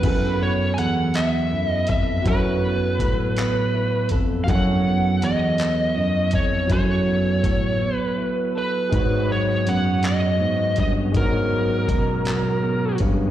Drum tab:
CC |x-----|------|------|------|
HH |x-xx-x|x-xx-x|x-xx-x|x-x---|
CP |---x--|---x--|---x--|------|
BD |o----o|o-o--o|o----o|o-o---|

CC |------|------|
HH |x-xx-x|x-xx-x|
CP |---x--|---x--|
BD |o----o|o-o--o|